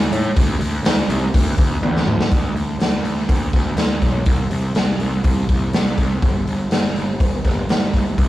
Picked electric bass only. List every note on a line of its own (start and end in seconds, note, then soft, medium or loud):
0.11 0.30 A2 medium
0.36 0.55 D2 medium
0.59 0.78 D2 loud
0.83 1.02 D2 medium
1.08 1.27 C2 medium
1.35 1.53 D2 medium
1.58 1.77 D2 medium
1.82 2.01 D2 medium
2.06 2.25 D2 medium
2.32 2.51 D2 medium
2.55 2.74 D2 medium
2.79 2.99 D2 medium
3.03 3.23 D2 medium
3.29 3.48 D2 medium
3.54 3.73 D2 medium
3.77 3.97 D2 medium
4.02 4.21 B1 medium
4.26 4.46 C2 medium
4.51 4.70 C2 medium
4.75 4.95 C2 medium
4.99 5.19 C2 medium
5.24 5.44 C2 medium
5.49 5.69 C2 medium
5.73 5.93 C2 medium
5.98 6.18 C2 medium
6.23 6.42 G1 medium
6.46 6.66 G1 medium
6.70 6.90 G1 medium
6.95 7.15 G1 medium
7.20 7.40 G1 medium
7.44 7.64 G1 medium
7.68 7.88 G1 medium
7.94 8.13 G1 medium
8.18 8.28 C2 medium